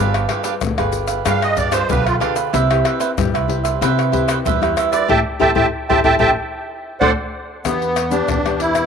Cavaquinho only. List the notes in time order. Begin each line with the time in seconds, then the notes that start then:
Already playing: D4 G4
0.00 B4 F5
0.29 D4 G4 B4 F5
0.43 D4 G4 B4 F5
0.78 G4 B4 F5
1.07 G4 B4 F5
1.25 D4 G4 B4 F5
1.56 D4 G4 B4 F5
1.71 D4 G4 B4 F5
1.89 D4 G4 B4 F5
2.05 G4 B4 F5
2.20 D4 G4 B4 F5
2.35 G4 B4 F5
2.53 E4 B4 C5 E5
2.84 E4 B4 C5 E5
2.99 E4 B4 C5 E5
3.34 B4 C5 E5
3.64 B4 C5 E5
3.81 E4 B4 C5 E5
4.12 E4 B4 C5 E5
4.28 E4 B4 C5 E5
4.45 E4 B4 C5 E5
4.62 B4 C5 E5
4.77 E4 B4 C5 E5
4.92 B4 C5 E5
5.09 G4 A4 C5
5.41 G4 A4 C5
5.56 G4 A4 C5
5.90 G4 A4 C5
6.05 G4 A4 C5
6.20 G4 A4 C5
7.02 A4 C5 D5